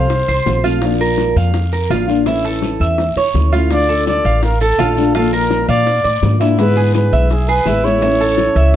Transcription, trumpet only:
0.00 0.64 C5 medium
3.72 4.05 D5 loud
4.08 4.41 D5 medium
4.44 4.60 A#4 medium
4.62 5.11 A4 loud
5.15 5.32 A4 medium
5.34 5.67 A#4 medium
5.69 6.37 D5 loud
6.59 6.92 B4 loud
6.95 7.28 B4 medium
7.32 7.50 G#4 medium
7.48 7.86 B4 loud
7.85 8.76 C#5 medium

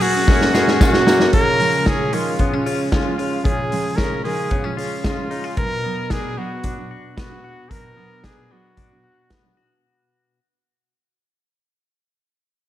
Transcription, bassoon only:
0.28 0.49 F#2 loud
0.54 0.76 F#2 loud
0.81 1.02 F#2 medium
1.07 1.29 F#2 loud
1.34 1.77 C#3 loud
1.87 2.08 C#3 medium
2.13 2.35 D#3 medium
2.40 2.61 C#3 medium
2.66 2.88 C#3 medium
2.93 3.14 C#3 medium
3.19 3.41 C#3 medium
3.46 3.89 C#3 loud
3.99 4.20 C#3 medium
4.25 4.47 D#3 medium
4.51 4.73 C#3 medium
4.78 5.00 C#3 medium
5.05 5.26 C#3 medium
5.31 5.53 C#3 medium

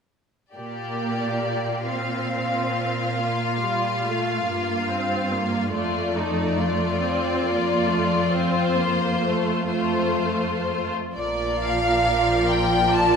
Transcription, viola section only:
0.54 1.85 A#3 soft
1.88 3.19 C4 soft
3.18 3.62 A#3 soft
3.61 4.04 G3 soft
4.04 4.47 A3 soft
4.46 4.88 A#3 soft
4.89 5.31 C4 soft
5.32 5.74 A#3 soft
5.74 6.99 A3 soft
7.02 7.45 C4 soft
7.44 7.88 A#3 soft
7.88 8.33 A3 soft
8.32 8.76 C4 soft
8.77 9.23 A#3 soft
9.22 9.68 A3 soft
9.70 10.93 A3 soft
11.16 13.16 F3 soft
11.16 13.16 F4 soft

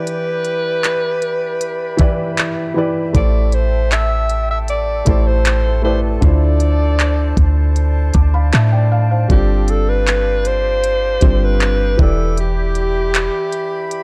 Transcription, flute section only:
0.00 3.10 G4 medium
0.00 2.87 D5 medium
0.00 5.94 E5 medium
0.00 3.11 B5 medium
3.14 9.03 A4 medium
3.14 6.19 G5 medium
3.14 11.72 A5 medium
6.22 9.27 C5 medium
6.22 11.68 D5 medium
9.29 14.03 G4 medium
9.29 11.96 F5 medium
11.99 14.03 D5 medium
11.99 14.03 E5 medium
11.99 14.03 B5 medium

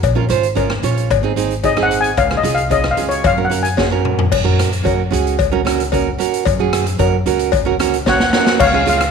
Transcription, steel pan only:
0.00 0.26 C#5 medium
1.65 1.83 D#5 medium
1.83 2.01 F#5 loud
2.01 2.19 G#5 loud
2.18 2.36 F5 loud
2.37 2.45 D#5 medium
2.55 2.72 F5 medium
2.72 2.90 D#5 medium
2.91 3.08 F5 medium
3.09 3.26 C#5 medium
3.26 3.44 F5 loud
3.45 3.52 F#5 medium
3.63 3.74 G#5 medium
8.08 8.14 C#5 medium
8.08 8.15 F#5 medium
8.16 8.22 F#5 medium
8.23 8.29 F#5 medium
8.30 8.36 F#5 medium
8.37 8.44 F#5 medium
8.45 8.52 F#5 medium
8.60 8.67 C#5 medium
8.60 8.66 F5 loud
8.67 8.74 F5 medium
8.75 8.81 F5 medium
8.82 8.88 F5 medium
8.89 8.96 F5 medium
8.98 9.05 F5 medium

